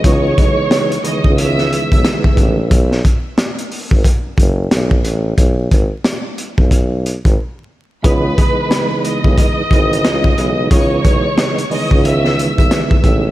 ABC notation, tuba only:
X:1
M:4/4
L:1/16
Q:"Swing 16ths" 1/4=90
K:C#m
V:1 name="Tuba" clef=bass
C,,2 B,,, z4 C,,4 B,,, z2 A,,,2 | B,,,2 z4 z G,,, z F,,, F,,,2 B,,,2 A,,,2 | B,,,2 G,,, z4 B,,,4 G,,, z4 | C,,2 z4 z B,,, z G,,, G,,,2 C,,2 B,,,2 |
C,,2 B,,, z4 C,,4 B,,, z2 A,,,2 |]